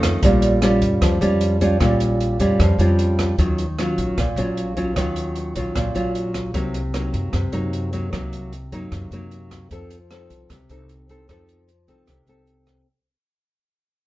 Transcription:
Already playing: F2 D#3 A3 C#4
0.03 F2, kick, cross-stick, closed hi-hat
0.22 A#1 A#2 G3 C#4 F4, kick, closed hi-hat
0.42 closed hi-hat
0.62 G3 C#4 F4, cross-stick, closed hi-hat
0.82 F2, kick, closed hi-hat
1.01 F2 F3, kick, cross-stick, closed hi-hat
1.21 F2 G3 C#4 F4, closed hi-hat
1.41 closed hi-hat
1.61 G3 C#4 F4, kick, closed hi-hat
1.80 A#1 A#2 G3 C#4 F4, kick, cross-stick, closed hi-hat
2.00 closed hi-hat
2.21 closed hi-hat
2.39 F2 G3 C#4 F4, kick, closed hi-hat
2.59 F2 F3, kick, cross-stick, closed hi-hat
2.79 F2 G3 C#4 F4, closed hi-hat
2.99 closed hi-hat
3.19 kick, cross-stick, closed hi-hat
3.38 D#2 D#3 F#3 C#4 F4, kick, closed hi-hat
3.58 closed hi-hat
3.79 F#3 C#4 F4, cross-stick, closed hi-hat
3.98 A#1, kick, closed hi-hat
4.18 A#1 A#2, kick, cross-stick, closed hi-hat
4.36 A#1 F#3 C#4 F4, closed hi-hat
4.57 closed hi-hat
4.77 F#3 C#4 F4, kick, closed hi-hat
4.96 D#2 D#3 F#3 C#4 F4, kick, cross-stick, closed hi-hat
5.16 closed hi-hat
5.36 closed hi-hat
5.56 A#1 F#3 C#4 F4, kick, closed hi-hat
5.75 A#1 A#2, kick, cross-stick, closed hi-hat
5.95 A#1 F#3 C#4 F4, closed hi-hat
6.15 closed hi-hat
6.34 kick, cross-stick, closed hi-hat
6.54 C2 C3 F#3 A#3 D#4, kick, closed hi-hat
6.74 closed hi-hat
6.94 F#3 A#3 D#4, cross-stick, closed hi-hat
7.14 F#2, kick, closed hi-hat
7.33 F#2 C3, kick, cross-stick, closed hi-hat
7.52 F#2 F#3 A#3 D#4, closed hi-hat
7.73 closed hi-hat
7.93 F#3 A#3 D#4, kick, closed hi-hat
8.13 C2 C3 F#3 A#3 D#4, kick, cross-stick, closed hi-hat
8.33 closed hi-hat
8.53 closed hi-hat
8.72 F#2 F#3 A#3 D#4, kick, closed hi-hat
8.92 F#2 C3, kick, cross-stick, closed hi-hat
9.11 F#2 F#3 A#3 D#4, closed hi-hat
9.31 closed hi-hat
9.51 kick, cross-stick, closed hi-hat
9.71 F2 F3 C4 D#4 A4, kick, closed hi-hat
9.91 closed hi-hat
10.11 C4 D#4 A4, cross-stick, closed hi-hat
10.30 C2, kick, closed hi-hat
10.50 C2 C3, kick, cross-stick, closed hi-hat
10.70 C2 C4 D#4 A4, closed hi-hat
10.89 closed hi-hat
11.09 C4 D#4 A4, kick, closed hi-hat
11.29 F2 F3 C4 D#4 A4, kick, cross-stick, closed hi-hat
11.49 closed hi-hat
11.69 closed hi-hat
11.88 C2 C4 D#4 A4, kick, closed hi-hat
12.07 C2 C3, kick, cross-stick, closed hi-hat
12.27 C2 C4 D#4 A4, closed hi-hat
12.47 closed hi-hat
12.67 kick, cross-stick, closed hi-hat

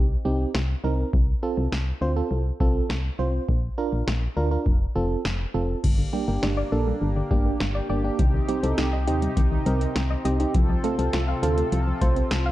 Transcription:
Already playing: C2
0.25 C2 C4 D#4 G4
0.54 C2, snare
0.84 C2 C4 D#4 A#4
1.13 C2, kick
1.43 C4 F4 A4
1.57 C2
1.72 C2, snare
2.01 D2 C4 F4 C5
2.16 C4 F4 A4
2.31 C2
2.60 C2 C4 F4 A4, kick
2.89 C2, snare
3.19 C2 C4 F4 C5
3.49 A#1, kick
3.78 D4 F4 A#4
3.92 A#1
4.07 A#1, snare
4.37 D2 D4 F4 A#4
4.51 D4 F4 A#4
4.66 F1, kick
4.96 F1 C4 F4 A4
5.25 F1, snare
5.54 F1 C4 F4 A4
5.84 G1 D3 A#3 D4 G4, kick, crash
5.99 D3
6.13 G3 A#3 D4 G4
6.28 G1 A#3 D4 G4
6.43 G1 D4, snare
6.57 D5
6.72 A#1 A#3 D4 A4
6.87 G3
7.01 G1 D3
7.16 D3
7.31 G1 G3 A#3 D4 G4, kick
7.46 A#3
7.60 G1, snare
7.75 D5
7.89 G1 A#3 D4 G4 D5
8.04 A#3 D4 G4
8.19 C2 C3 D#3 C4 D#4, kick, closed hi-hat
8.34 D#3
8.48 G3 C4 D#4 G4, closed hi-hat
8.63 C2 C4 D#4 A4, closed hi-hat
8.78 C2 D#4, snare, closed hi-hat
8.93 D#5
9.07 D#2 C4 D#4 G4, closed hi-hat
9.22 G3, closed hi-hat
9.37 C2 D#3, kick, closed hi-hat
9.52 D#3
9.66 C2 G3 C4 D#4 A#4, closed hi-hat
9.81 C4, closed hi-hat
9.96 C2, snare, closed hi-hat
10.10 D#5
10.25 C2 C4 D#4 G4 D#5, closed hi-hat
10.40 C4 D#4 G4, closed hi-hat
10.54 C2 C3 F3 F4 A4, kick, closed hi-hat
10.69 F3
10.84 A3 C4 F4 A4, closed hi-hat
10.99 C2 C4 F4 A4, closed hi-hat
11.13 C2 F4, snare, closed hi-hat
11.28 F5
11.43 D2 C4 F4 A4, closed hi-hat
11.57 A3, closed hi-hat
11.72 C2 F3, closed hi-hat
11.87 F3
12.01 C2 A3 C4 F4 C5, kick, closed hi-hat
12.16 C4, closed hi-hat
12.31 C2, snare, closed hi-hat
12.46 F5

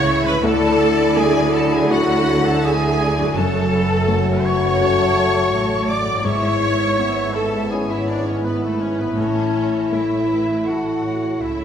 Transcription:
Already playing: C#2 A2 C#3 E3 A3 E4 A4 C#5 C#6
0.07 E5
0.25 D3 B4 B5
0.29 A3
0.34 E4
0.38 F#4
0.43 D2 D3 F#3 A4 D5 A5
1.17 A3 G#4 G#5
1.52 A4 A5
1.72 G#4 G#5
1.90 E4 F#4 F#5
2.45 A4 A5
2.63 G#4 E5 G#5
3.02 D5
3.18 F#2
3.23 A3
3.27 C#3
3.32 F#1 F#2 A3 F#4 A4
3.36 F#2 A4 C#5 A5
3.75 B4
4.08 A3 C#5
4.44 B4 C#5 C#6
4.80 C#3 F#4 A4
5.51 A1 A2 A4
5.88 C#5 D5 D6
6.06 G#2
6.11 B3
6.15 C#4
6.20 E4
6.24 G#1 G#2 B3 E4 C#5 E5 C#6
6.64 E5
6.99 B3
7.34 A4 A5
7.70 C#4 E4 G#4 C#5 G#5
7.89 E4 E5
8.07 D4 D5
8.26 C#4 C#5
8.44 B3 B4
8.62 A3 A4
8.80 C#4 C#5
8.99 A2 B3 B4
9.03 A3
9.08 E4
9.17 A1 A2 A3 C#4 A4 C#5
9.90 A3 E4 C#5 E5
10.28 B4
10.66 E4 F#4 A4 F#5
11.03 C#5
11.41 C#2 C#3 E4 E5

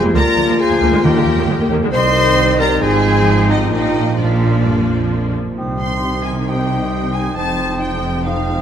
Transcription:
Already playing: G#3 F4 G#4 C5
0.04 F2 G3 A#3
0.14 D2 F3 A#3 A#4 D5 A#5
0.37 D2 F3 A#3
0.48 D2 F3 A#3
0.59 G#4 C5 G#5
0.71 D2 F3 A#3
0.81 D2 F3 A#3
0.92 D2 D#3 G#3
1.03 D#2 D#3 A#3 G4 A#4 G5
1.14 D#2 D3 G#3
1.26 D#2 D#3 A#3
1.37 D#2 D#3 A#3
1.48 D#2 D3 G#3
1.59 D#2 D#3 A#3
1.70 D#2 D#3 A#3
1.81 D#2 D3 G#3
1.92 C2 D#3 G3 C4 D#4 C5 D#5 C6
2.59 A#4 D5 A#5
2.81 G#1 G#2 F3 C4 G#4 C5 G#5
3.48 D#4 G4 D#5
3.71 A#1 A#2 F3 A#3 D#4 F4 G4 D#5
4.18 A#2 F3 A#3 D4 F4 D5
4.65 G2
4.88 F2
5.55 C2 C3 D#3 G3 C4 D#4 C5 D#6
5.79 C6
6.24 G#5
6.46 C4 C5 G5 D#6
7.13 G#5
7.36 F1 F2 F3 C4 C5 A5 D#6
7.80 G5
8.24 C4 C5 F5 D#6

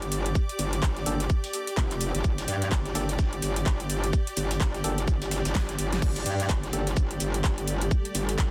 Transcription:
Already playing: G1 G4 D5 D6
0.02 closed hi-hat
0.12 open hi-hat, shaker
0.26 closed hi-hat
0.35 kick, shaker
0.49 closed hi-hat
0.59 G1, open hi-hat, shaker
0.73 closed hi-hat
0.83 G1, kick, snare, clap, shaker
0.96 snare, closed hi-hat
1.06 G1 A#3 D4 G4 A4, open hi-hat, shaker
1.20 closed hi-hat
1.30 kick, shaker
1.44 closed hi-hat
1.53 open hi-hat, shaker
1.67 closed hi-hat
1.77 F1, kick, snare, clap, shaker
1.91 clap, closed hi-hat
2.01 open hi-hat, shaker
2.15 G1, closed hi-hat
2.24 G1, kick, shaker
2.38 closed hi-hat
2.48 G2, open hi-hat, shaker
2.62 closed hi-hat
2.72 G1, kick, snare, clap, shaker
2.85 snare, closed hi-hat
2.95 G1 A#3 D4 G4 A4, snare, open hi-hat, shaker
3.09 snare, closed hi-hat
3.19 G1, kick, snare, shaker
3.33 closed hi-hat
3.42 G1, open hi-hat, shaker
3.56 closed hi-hat
3.66 G1, kick, snare, clap, shaker
3.80 closed hi-hat
3.90 open hi-hat, shaker
4.04 closed hi-hat
4.13 kick, shaker
4.27 closed hi-hat
4.37 G1, open hi-hat, shaker
4.51 closed hi-hat
4.60 G1, kick, snare, clap, shaker
4.74 snare, closed hi-hat
4.84 G1 A#3 D4 G4 A4, open hi-hat, shaker
4.98 closed hi-hat
5.08 G1, kick, shaker
5.22 closed hi-hat
5.31 snare, open hi-hat, shaker
5.45 G1, snare, closed hi-hat, shaker
5.55 G1, kick, snare, clap, shaker
5.69 snare, closed hi-hat
5.79 G1, open hi-hat, shaker
5.93 snare, closed hi-hat
6.02 G1 G3 A#3 D4 A4, kick, crash, shaker
6.16 closed hi-hat
6.26 G2, open hi-hat, shaker
6.40 closed hi-hat
6.49 G1, kick, snare, clap, shaker
6.63 snare, closed hi-hat
6.73 G1 A#3 D4 G4 A4, open hi-hat, shaker
6.87 snare, closed hi-hat
6.97 G1, kick, shaker
7.11 closed hi-hat
7.20 G1, open hi-hat, shaker
7.34 closed hi-hat
7.44 G1, kick, snare, clap, shaker
7.58 closed hi-hat
7.68 open hi-hat, shaker
7.81 closed hi-hat
7.91 kick, shaker
8.05 closed hi-hat
8.15 G1, open hi-hat, shaker
8.29 closed hi-hat
8.38 G1, kick, snare, clap, shaker

